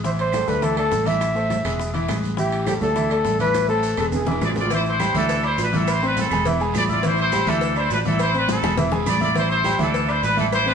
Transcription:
Already playing: A1
0.04 E3 E4 C5 E5, high bongo, high conga, maracas
0.19 C5, high conga, high timbale, maracas
0.32 G3 G4 A4, high bongo, high conga, high timbale, short guiro, claves, maracas
0.48 D2 A3 A4 B4 D5, high conga, short guiro, maracas
0.62 E3 E4 A4 E5, high bongo, high conga, high timbale, long guiro, maracas
0.77 A3 A4 D5, high conga, high timbale, claves, maracas
0.91 A1, high bongo, low bongo, high conga, short guiro, maracas
1.06 E3 E4 E5, high conga, high timbale, short guiro, maracas
1.21 high bongo, high conga, high timbale, claves, maracas
1.35 A3 A4 C5, high bongo, high conga, maracas
1.50 high bongo, high conga, high timbale, short guiro, maracas
1.64 E1 G#3 G#4 B4, high bongo, high conga, low conga, high timbale, short guiro, claves, maracas
1.79 high bongo, high conga, long guiro, maracas
1.94 E3 E4 E5, high bongo, high conga, high timbale, maracas
2.08 A1 G#3 G#4 B4, high bongo, low bongo, high conga, high timbale, short guiro, claves, maracas
2.23 high conga, short guiro, maracas
2.37 E3 E4 G4 E5, high bongo, high conga, long guiro, maracas
2.52 high conga, high timbale, maracas
2.67 G3 G4 A4, high bongo, high conga, high timbale, short guiro, claves, maracas
2.81 D2 A3 A4 D5, high conga, short guiro, maracas
2.96 E3 E4 E5, high bongo, high conga, high timbale, maracas
3.10 A3 A4 D5, high conga, high timbale, claves, maracas
3.25 A1, high bongo, low bongo, high conga, short guiro, maracas
3.39 E3 E4 B4 E5, high conga, high timbale, short guiro, maracas
3.54 high bongo, high conga, high timbale, long guiro, claves, maracas
3.68 A3 A4 C5, maracas
3.83 high timbale, short guiro, maracas
3.97 E1 G#3 G#4 A4 B4, low bongo, low conga, high timbale, short guiro, claves, maracas
4.12 G#4, low conga, high timbale, long guiro, maracas
4.26 E3 E4 E5, low bongo, low conga, maracas
4.32 high timbale
4.41 A1 G#3 G#4 B4 D5, low bongo, low timbale, short guiro, claves, maracas
4.51 low timbale
4.56 F4 D5, low bongo, low conga, short guiro, maracas
4.61 low timbale
4.70 E3 E4 C5 E5, cowbell, high conga, maracas
4.86 E4 C5, high conga, maracas
5.00 G3 G4 G5, cowbell, high conga, low timbale, low agogo, short guiro, claves, maracas
5.14 D2 E3 D4 E4 A4 E5, high conga, low agogo, short guiro, maracas
5.29 cowbell, high conga, maracas
5.43 D4 E4 C5 D5 D6, high conga, low agogo, claves, maracas
5.58 A1 D4, cowbell, high conga, low timbale, low agogo, short guiro, maracas
5.62 B4
5.73 E3 C4 E4 A4 E5, high conga, short guiro, maracas
5.87 E4 C5, cowbell, low agogo, long guiro, claves, maracas
6.02 C4 D4 B4 C5 C6, high conga, maracas
6.17 C4 A4, cowbell, high conga, low timbale, low agogo, short guiro, maracas
6.31 E1 G#3 G#4 G#5, cowbell, low conga, low agogo, short guiro, claves, maracas
6.45 E3 E4 E5, cowbell, high conga, low conga, long guiro, maracas
6.60 G#3 G#4 G#5, high conga, low agogo, maracas
6.74 A1 G#4 D5, cowbell, high conga, low timbale, low agogo, short guiro, claves, maracas
6.89 E4 F4 D5 E5 E6, high conga, short guiro, maracas
7.03 E3 E4 C5 E5, cowbell, high conga, long guiro, maracas
7.18 E4 C5, high conga, maracas
7.32 G3 G4 G5, cowbell, high conga, low timbale, low agogo, short guiro, claves, maracas
7.46 D2 E3 D4 E4 A4 E5, high conga, low agogo, short guiro, maracas
7.61 cowbell, high conga, maracas
7.76 D4 E4 C5 D5 D6, high conga, low agogo, claves, maracas
7.90 A1 D4 B4, cowbell, high conga, low timbale, low agogo, short guiro, maracas
8.05 E3 C4 E4 A4 E5, high conga, short guiro, maracas
8.19 E4 C5, cowbell, high conga, low agogo, claves, maracas
8.34 C4 D4 B4 C5 C6, high conga, maracas
8.48 C4 A4, cowbell, high bongo, high conga, low timbale, low agogo, short guiro, maracas
8.63 E1 G#3 G#4 G#5, cowbell, high bongo, low conga, low agogo, short guiro, claves, maracas
8.77 E3 E4 E5, cowbell, low bongo, high conga, low conga, long guiro, maracas
8.92 G#3 G#4 G#5, low bongo, high conga, low agogo, maracas
9.06 A1 G#4 D5, cowbell, low bongo, high conga, low timbale, low agogo, short guiro, claves, maracas
9.21 E4 F4 D5 E5 E6, low bongo, high conga, short guiro, maracas
9.35 E3 E4 C5 E5, cowbell, high conga, maracas
9.50 E4 C5, high conga, maracas
9.64 G3 G4 G5, cowbell, high conga, low timbale, low agogo, short guiro, claves, maracas
9.79 D2 E3 D4 E4 A4 E5, high conga, low agogo, short guiro, maracas
9.94 cowbell, high conga, long guiro, maracas
10.08 D4 E4 C5 D5 D6, high conga, low agogo, claves, maracas
10.23 A1 D4 B4, cowbell, low timbale, low agogo, short guiro, maracas
10.37 E3 C4 E4 A4 E5, high conga, short guiro, maracas
10.52 E4 C5, cowbell, high conga, low agogo, claves, maracas
10.66 C4 D4 B4 C5 C6, high conga, maracas

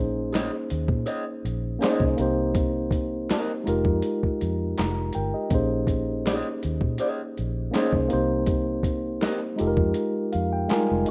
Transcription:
Already playing: A#1 A#3 C#4 D#4 G#4 C5
0.33 G#4 C#5 D#5, snare, clap, closed hi-hat
0.70 D#2, closed hi-hat
0.88 A#2, kick
1.06 G#4 C#5 D#5, closed hi-hat
1.45 A#1, closed hi-hat
1.79 A#3 C#4 D#4 G#4 C#5 D#5, closed hi-hat
1.83 C5, snare, clap
2.00 C2, kick
2.16 C2 A#3 C4 D#4 G4, closed hi-hat
2.22 C5
2.55 kick, closed hi-hat
2.91 kick, closed hi-hat
3.30 G4 A#4 D#5, snare, clap, closed hi-hat
3.64 F1 G#3 D#4 F4 G4, closed hi-hat
3.69 A#4
3.85 F2, kick
4.02 closed hi-hat
4.23 kick
4.41 F2, closed hi-hat
4.78 F1 A#5, snare, clap, closed hi-hat
5.13 G1 A#4 G5, closed hi-hat
5.34 G4 D#5
5.50 A#1 A#3 C#4 D#4, kick, closed hi-hat
5.54 G#4 C5
5.87 kick, closed hi-hat
6.26 G#4 C#5 D#5, snare, clap, closed hi-hat
6.63 D#2, closed hi-hat
6.81 A#2, kick
6.98 G#4 C#5 D#5, closed hi-hat
7.38 A#1, closed hi-hat
7.71 A#3 C#4 D#4 G#4, clap, closed hi-hat
7.75 C5 C#5 D#5, snare
7.93 C2, kick
8.08 A#3 C4 D#4 G4, closed hi-hat
8.13 C2 C5
8.46 kick, closed hi-hat
8.83 kick, closed hi-hat
9.21 G4 A#4 D#5, snare, clap, closed hi-hat
9.56 G#3 D#4 F4 G4, closed hi-hat
9.61 F1 A4
9.67 A#4
9.77 F2, kick
9.94 closed hi-hat
10.32 F2 F5, closed hi-hat
10.53 G5
10.68 G3 G#3 D#4 F4 G#5, snare, clap, closed hi-hat
10.73 A#4
10.91 F1
11.06 G#3 D#4, closed hi-hat

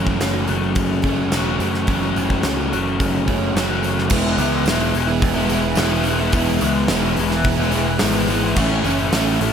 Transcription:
Already playing: F#1 F#2 C#3 E3 F#3 A3 C#4 F#4 G#4
0.07 kick, tambourine
0.21 F#1 C#4, snare, open hi-hat, tambourine
0.48 F#1 F#3 A3 C#4 F#4, open hi-hat, tambourine
0.63 tambourine
0.75 F#1 G#4, kick, open hi-hat, tambourine
1.02 F#3 A3 C#4, kick, open hi-hat
1.06 F#2 C#3
1.31 E1 F#2 C#3 E3 F#3 A3 C#4, snare, open hi-hat, tambourine
1.36 F#4
1.47 tambourine
1.60 F#2 A3, open hi-hat, tambourine
1.74 snare, tambourine
1.87 F#1 F#2 C#3 E3 F#3 A3 C#4, kick, open hi-hat, tambourine
1.91 F#4
2.03 tambourine
2.16 F#1 E3, open hi-hat, tambourine
2.30 kick, tambourine
2.43 C#2 C#4, snare, open hi-hat, tambourine
2.60 tambourine
2.72 F#1 F#3 A3 C#4 F#4, open hi-hat, tambourine
2.87 tambourine
2.99 F#1 G#4, kick, open hi-hat, tambourine
3.16 tambourine
3.26 F#1 F#2 C#3 F#3 A3 C#4, kick, open hi-hat, tambourine
3.54 F#1 F#2 C#3 E3 F#3 A3 F#4, snare, open hi-hat, tambourine
3.58 C#4
3.70 tambourine
3.82 A3, open hi-hat, tambourine
3.98 snare, tambourine
4.10 E1 E3 G#3 B3, kick, crash, tambourine
4.14 E4
4.38 C#2 E3 G#3 B3 E4, open hi-hat, tambourine
4.66 E1 E3 G#3 B3 E4, snare, open hi-hat, tambourine
4.93 E1 E3 G#3 B3 E4 G#4, muted overdriven electric guitar stroke, open hi-hat
5.07 G#3 B3 E4, muted overdriven electric guitar stroke
5.22 E1 E4, kick, open hi-hat
5.36 G#3 B3 E4
5.49 E3 G#3 B3 E4 G#4, open hi-hat, tambourine
5.63 muted overdriven electric guitar stroke
5.75 E1 E3 G#3 B3, snare, open hi-hat, tambourine
5.80 E4
5.92 G#3 B3 E4
6.04 E3 G#3 B3 E4, open hi-hat, tambourine
6.08 E4
6.20 G#3 B3 E4
6.32 E1 E3 G#3 B3, kick, open hi-hat, tambourine
6.36 E4
6.61 C#2 E3 G#3 B3 E4, open hi-hat, tambourine
6.88 E1 E3 G#3 B3 E4, snare, open hi-hat, tambourine
7.16 E1 E3 G#3 B3 E4 G#4, muted overdriven electric guitar stroke, open hi-hat
7.30 G#3 B3 E4, muted overdriven electric guitar stroke, snare
7.44 E1 E4, kick, open hi-hat
7.57 G#3 B3 E4
7.71 E3 G#3 B3 E4 G#4, open hi-hat, tambourine
7.86 muted overdriven electric guitar stroke
7.99 G#1 E3 G#3 B3 E4, snare, open hi-hat, tambourine
8.13 G#3 B3 E4
8.27 E3 G#3 B3 E4, open hi-hat, tambourine
8.43 G#3 B3 E4
8.55 A1 A2 E3 A3 C#4 E4, kick, tambourine, crash
8.84 F#1 E3 A3 C#4, open hi-hat, tambourine
8.88 E4
9.11 A1 A2 E3 A3 C#4 E4, snare, open hi-hat, tambourine
9.40 A1 E3 A3 C#4 E4 A4, muted overdriven electric guitar stroke, open hi-hat

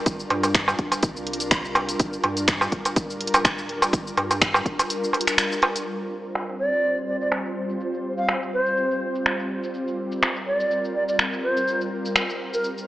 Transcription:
Already playing: G3 D4 F4 A#4
0.06 G1, kick, closed hi-hat, shaker
0.20 shaker
0.30 G2, closed hi-hat, darbuka ka
0.43 closed hi-hat, darbuka tek, shaker
0.55 finger snap, kick, closed hi-hat, shaker
0.68 darbuka ka, shaker
0.79 D1, kick, closed hi-hat
0.92 closed hi-hat, darbuka ka, shaker
1.03 C2, kick, closed hi-hat, shaker
1.17 shaker
1.27 closed hi-hat
1.33 closed hi-hat
1.40 closed hi-hat, shaker
1.51 finger snap, kick, closed hi-hat, shaker
1.65 shaker
1.75 closed hi-hat, darbuka tek
1.89 closed hi-hat, shaker
2.00 G1, kick, closed hi-hat, shaker
2.13 shaker
2.24 G2, closed hi-hat, darbuka ka
2.37 closed hi-hat, shaker
2.48 finger snap, kick, closed hi-hat, shaker
2.61 darbuka ka, shaker
2.72 D1, kick, closed hi-hat
2.85 closed hi-hat, darbuka ka, shaker
2.96 kick, closed hi-hat, shaker
3.10 shaker
3.21 closed hi-hat
3.27 closed hi-hat
3.34 D1, closed hi-hat, darbuka tek, shaker
3.45 finger snap, kick, closed hi-hat, darbuka tek, shaker
3.58 shaker
3.69 closed hi-hat
3.82 closed hi-hat, darbuka ka, shaker
3.93 G1, kick, closed hi-hat, shaker
4.07 shaker
4.17 G2, closed hi-hat, darbuka ka
4.31 closed hi-hat, darbuka tek, shaker
4.42 finger snap, kick, closed hi-hat, shaker
4.54 darbuka ka, shaker
4.66 D1, kick, closed hi-hat
4.79 closed hi-hat, darbuka ka, shaker
4.90 closed hi-hat, shaker
5.04 shaker
5.13 closed hi-hat, darbuka tek
5.21 closed hi-hat
5.27 finger snap, closed hi-hat, shaker
5.38 finger snap, closed hi-hat, shaker
5.52 shaker
5.62 closed hi-hat, darbuka tek
5.76 closed hi-hat, shaker
5.86 G3 C4 F4 C5, crash, shaker
6.25 shaker
6.35 finger snap, shaker
6.49 shaker
6.59 D5
6.73 shaker
6.84 shaker
6.97 shaker
7.08 D5
7.21 D5, shaker
7.32 finger snap, shaker
7.46 shaker
7.70 shaker
7.81 shaker
7.94 shaker
8.18 F5, shaker
8.29 finger snap, shaker
8.42 shaker
8.53 C5
8.66 shaker
8.77 shaker
8.91 shaker
9.15 shaker
9.26 finger snap, shaker
9.39 shaker
9.64 shaker
9.74 A#4, shaker
9.88 shaker
10.12 shaker
10.23 finger snap, shaker
10.36 shaker
10.47 D5
10.60 shaker
10.71 shaker
10.85 shaker
10.95 D5
11.08 D5, shaker
11.19 finger snap, shaker
11.33 shaker
11.43 C5
11.57 shaker
11.68 shaker
11.81 shaker
12.05 shaker
12.16 finger snap, shaker
12.29 shaker
12.53 A#4, shaker
12.64 shaker
12.78 shaker

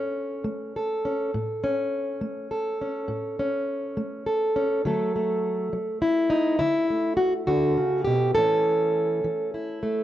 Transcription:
Already playing: A2 C#4 A4
0.44 A3
0.76 A4
1.05 C#4
1.34 A2
1.64 C#4
2.21 A3
2.51 A4
2.81 C#4
3.08 A2
3.39 C#4
3.97 A3
4.26 A4
4.56 C#4
4.85 D3 F#3 A3 A4
5.16 A3
5.73 F#3
6.02 E4
6.30 D#4
6.59 D3 E4
6.90 A3
7.17 F#4
7.47 D3 F#4
7.77 C#3
8.04 B2 G4
8.35 A2 E3 A3 C#4 A4
9.24 E3
9.54 E4
9.83 A3

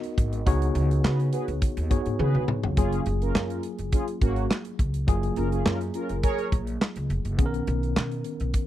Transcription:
Already playing: B3 D#4 F#4 A#4 D#5
0.04 closed hi-hat
0.18 G#1, kick, closed hi-hat
0.33 closed hi-hat
0.46 C#2 B3 D#4 F#4 G#4 C#5, kick, closed hi-hat
0.62 closed hi-hat
0.75 C#2, closed hi-hat
0.91 closed hi-hat
1.04 C#3 F#4 G#4 B4, snare, clap
1.20 closed hi-hat
1.33 F#4 G#4 B4, closed hi-hat
1.48 C#2, closed hi-hat
1.62 kick, closed hi-hat
1.77 D#2, closed hi-hat
1.90 F#2 B3 D#4 F#4 G#4 C#5, kick, closed hi-hat
2.06 G#2, closed hi-hat
2.19 C#3 F#4 G#4 B4, high tom
2.35 C#2, mid tom
2.48 mid tom
2.63 C#2, floor tom
2.76 F#1 F#3 A#3 C#4 F4 G#4, kick, closed hi-hat
2.93 closed hi-hat
3.06 F#1, closed hi-hat
3.22 C#4 F4 A#4, closed hi-hat
3.35 F#2, snare, clap
3.50 closed hi-hat
3.63 closed hi-hat
3.79 F#1, closed hi-hat
3.92 C#4 F4 G#4, kick, closed hi-hat
4.08 closed hi-hat
4.21 G#1 A#3 C#4 F#4, kick, closed hi-hat
4.36 closed hi-hat
4.51 snare, clap
4.65 closed hi-hat
4.79 C#2, kick, closed hi-hat
4.94 closed hi-hat
5.07 F#1 F#3 A#3 F4 G#4, kick, closed hi-hat
5.23 closed hi-hat
5.36 F#1 C#4 F4 A#4, closed hi-hat
5.52 C#4 F4 G#4, closed hi-hat
5.65 F#2 C#4 F4 A#4, snare, clap
5.81 closed hi-hat
5.94 C#4 F4 A#4, closed hi-hat
6.09 F#1, closed hi-hat
6.23 G#4 A#4 C#5, kick, closed hi-hat
6.39 closed hi-hat
6.52 A#1, kick, closed hi-hat
6.67 closed hi-hat
6.81 snare, clap
6.96 C#2, closed hi-hat
7.10 F1, closed hi-hat
7.25 F#1, closed hi-hat
7.38 B1 D#3 B3 C#4 G#4, kick, closed hi-hat
7.46 A#4
7.54 closed hi-hat
7.67 B1, closed hi-hat
7.83 closed hi-hat
7.96 B2, snare, clap
8.12 closed hi-hat
8.24 closed hi-hat
8.40 B1, closed hi-hat
8.54 kick, closed hi-hat

